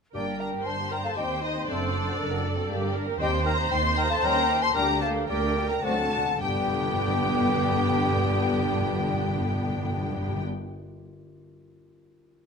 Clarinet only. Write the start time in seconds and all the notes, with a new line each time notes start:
0.14 G4
0.40 A#4
0.66 C5
0.91 A#4
1.04 A4
1.16 G4
1.42 D#4
1.69 D4
3.21 G4
3.46 A#4
3.71 C5
3.97 A#4
4.11 A4
4.24 A#4
4.62 C5
4.75 A#4
5.02 A4
5.30 G4
5.69 A#4
5.83 A4
6.41 G4